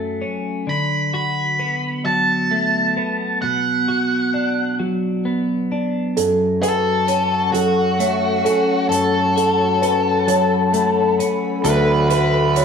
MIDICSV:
0, 0, Header, 1, 7, 480
1, 0, Start_track
1, 0, Key_signature, 3, "minor"
1, 0, Tempo, 914634
1, 357, Time_signature, 6, 3, 24, 8
1, 6638, End_track
2, 0, Start_track
2, 0, Title_t, "Ambient pad"
2, 0, Program_c, 0, 92
2, 3233, Note_on_c, 0, 69, 55
2, 3234, Note_on_c, 0, 78, 57
2, 3235, Note_on_c, 0, 85, 63
2, 3238, Note_on_c, 0, 73, 57
2, 4662, Note_off_c, 0, 85, 0
2, 4676, Note_on_c, 0, 83, 65
2, 6091, Note_off_c, 0, 78, 0
2, 6093, Note_off_c, 0, 73, 0
2, 6116, Note_on_c, 0, 62, 53
2, 6119, Note_on_c, 0, 78, 59
2, 6638, Note_off_c, 0, 62, 0
2, 6638, Note_off_c, 0, 69, 0
2, 6638, Note_off_c, 0, 78, 0
2, 6638, Note_off_c, 0, 83, 0
2, 6638, End_track
3, 0, Start_track
3, 0, Title_t, "Lead electric guitar"
3, 0, Program_c, 1, 29
3, 0, Note_on_c, 1, 81, 57
3, 94, Note_off_c, 1, 81, 0
3, 364, Note_on_c, 1, 83, 67
3, 595, Note_off_c, 1, 83, 0
3, 601, Note_on_c, 1, 83, 67
3, 1077, Note_off_c, 1, 83, 0
3, 1079, Note_on_c, 1, 81, 68
3, 1793, Note_on_c, 1, 78, 52
3, 1821, Note_off_c, 1, 81, 0
3, 2496, Note_off_c, 1, 78, 0
3, 3477, Note_on_c, 1, 69, 75
3, 3945, Note_off_c, 1, 69, 0
3, 3947, Note_on_c, 1, 66, 66
3, 4651, Note_off_c, 1, 66, 0
3, 4665, Note_on_c, 1, 69, 71
3, 5848, Note_off_c, 1, 69, 0
3, 6109, Note_on_c, 1, 71, 78
3, 6342, Note_off_c, 1, 71, 0
3, 6348, Note_on_c, 1, 71, 82
3, 6638, Note_off_c, 1, 71, 0
3, 6638, End_track
4, 0, Start_track
4, 0, Title_t, "Felt piano"
4, 0, Program_c, 2, 0
4, 3236, Note_on_c, 2, 69, 64
4, 3476, Note_on_c, 2, 71, 51
4, 3478, Note_off_c, 2, 69, 0
4, 3715, Note_on_c, 2, 73, 53
4, 3718, Note_off_c, 2, 71, 0
4, 3957, Note_off_c, 2, 73, 0
4, 3957, Note_on_c, 2, 69, 62
4, 4196, Note_on_c, 2, 73, 54
4, 4198, Note_off_c, 2, 69, 0
4, 4434, Note_on_c, 2, 69, 56
4, 4437, Note_off_c, 2, 73, 0
4, 4909, Note_off_c, 2, 69, 0
4, 4917, Note_on_c, 2, 69, 52
4, 5154, Note_on_c, 2, 71, 55
4, 5157, Note_off_c, 2, 69, 0
4, 5395, Note_off_c, 2, 71, 0
4, 5395, Note_on_c, 2, 73, 66
4, 5874, Note_off_c, 2, 73, 0
4, 6112, Note_on_c, 2, 69, 74
4, 6350, Note_on_c, 2, 71, 51
4, 6352, Note_off_c, 2, 69, 0
4, 6590, Note_on_c, 2, 73, 64
4, 6591, Note_off_c, 2, 71, 0
4, 6638, Note_off_c, 2, 73, 0
4, 6638, End_track
5, 0, Start_track
5, 0, Title_t, "Clean electric guitar"
5, 0, Program_c, 3, 27
5, 0, Note_on_c, 3, 42, 46
5, 0, Note_on_c, 3, 54, 43
5, 0, Note_on_c, 3, 57, 47
5, 0, Note_on_c, 3, 61, 45
5, 0, Note_on_c, 3, 66, 46
5, 107, Note_off_c, 3, 61, 0
5, 113, Note_on_c, 3, 61, 45
5, 114, Note_off_c, 3, 42, 0
5, 352, Note_on_c, 3, 50, 44
5, 353, Note_off_c, 3, 57, 0
5, 355, Note_off_c, 3, 61, 0
5, 594, Note_off_c, 3, 66, 0
5, 596, Note_on_c, 3, 66, 52
5, 837, Note_on_c, 3, 59, 42
5, 1074, Note_off_c, 3, 54, 0
5, 1076, Note_on_c, 3, 54, 43
5, 1317, Note_on_c, 3, 57, 44
5, 1552, Note_off_c, 3, 59, 0
5, 1556, Note_off_c, 3, 50, 0
5, 1558, Note_on_c, 3, 59, 50
5, 1798, Note_off_c, 3, 57, 0
5, 1799, Note_off_c, 3, 59, 0
5, 1800, Note_on_c, 3, 47, 49
5, 2036, Note_off_c, 3, 66, 0
5, 2038, Note_on_c, 3, 66, 51
5, 2277, Note_on_c, 3, 62, 40
5, 2514, Note_off_c, 3, 54, 0
5, 2516, Note_on_c, 3, 54, 48
5, 2756, Note_on_c, 3, 59, 47
5, 2994, Note_off_c, 3, 62, 0
5, 3000, Note_off_c, 3, 47, 0
5, 3001, Note_on_c, 3, 62, 48
5, 3238, Note_off_c, 3, 54, 0
5, 3238, Note_off_c, 3, 59, 0
5, 3239, Note_off_c, 3, 66, 0
5, 3240, Note_off_c, 3, 62, 0
5, 3241, Note_on_c, 3, 42, 47
5, 3480, Note_on_c, 3, 66, 56
5, 3715, Note_on_c, 3, 61, 44
5, 3955, Note_on_c, 3, 54, 47
5, 4195, Note_on_c, 3, 57, 52
5, 4425, Note_off_c, 3, 61, 0
5, 4432, Note_on_c, 3, 61, 48
5, 4439, Note_off_c, 3, 42, 0
5, 4672, Note_on_c, 3, 42, 51
5, 4911, Note_off_c, 3, 66, 0
5, 4913, Note_on_c, 3, 66, 53
5, 5147, Note_off_c, 3, 61, 0
5, 5153, Note_on_c, 3, 61, 50
5, 5389, Note_off_c, 3, 54, 0
5, 5391, Note_on_c, 3, 54, 47
5, 5629, Note_off_c, 3, 57, 0
5, 5632, Note_on_c, 3, 57, 53
5, 5868, Note_off_c, 3, 61, 0
5, 5872, Note_off_c, 3, 42, 0
5, 5874, Note_on_c, 3, 61, 51
5, 6112, Note_off_c, 3, 57, 0
5, 6112, Note_on_c, 3, 50, 48
5, 6114, Note_off_c, 3, 61, 0
5, 6350, Note_off_c, 3, 66, 0
5, 6352, Note_on_c, 3, 66, 56
5, 6588, Note_on_c, 3, 59, 49
5, 6638, Note_off_c, 3, 50, 0
5, 6638, Note_off_c, 3, 54, 0
5, 6638, Note_off_c, 3, 59, 0
5, 6638, Note_off_c, 3, 66, 0
5, 6638, End_track
6, 0, Start_track
6, 0, Title_t, "Fingered electric bass"
6, 0, Program_c, 4, 33
6, 6114, Note_on_c, 4, 38, 61
6, 6638, Note_off_c, 4, 38, 0
6, 6638, End_track
7, 0, Start_track
7, 0, Title_t, "Drums"
7, 3238, Note_on_c, 9, 42, 60
7, 3291, Note_off_c, 9, 42, 0
7, 3480, Note_on_c, 9, 42, 42
7, 3532, Note_off_c, 9, 42, 0
7, 3716, Note_on_c, 9, 42, 42
7, 3768, Note_off_c, 9, 42, 0
7, 3959, Note_on_c, 9, 42, 50
7, 4011, Note_off_c, 9, 42, 0
7, 4199, Note_on_c, 9, 42, 42
7, 4251, Note_off_c, 9, 42, 0
7, 4439, Note_on_c, 9, 42, 39
7, 4491, Note_off_c, 9, 42, 0
7, 4680, Note_on_c, 9, 42, 59
7, 4732, Note_off_c, 9, 42, 0
7, 4919, Note_on_c, 9, 42, 46
7, 4972, Note_off_c, 9, 42, 0
7, 5158, Note_on_c, 9, 42, 43
7, 5210, Note_off_c, 9, 42, 0
7, 5395, Note_on_c, 9, 42, 57
7, 5448, Note_off_c, 9, 42, 0
7, 5635, Note_on_c, 9, 42, 44
7, 5687, Note_off_c, 9, 42, 0
7, 5878, Note_on_c, 9, 42, 48
7, 5930, Note_off_c, 9, 42, 0
7, 6111, Note_on_c, 9, 42, 68
7, 6163, Note_off_c, 9, 42, 0
7, 6351, Note_on_c, 9, 42, 48
7, 6404, Note_off_c, 9, 42, 0
7, 6591, Note_on_c, 9, 42, 50
7, 6638, Note_off_c, 9, 42, 0
7, 6638, End_track
0, 0, End_of_file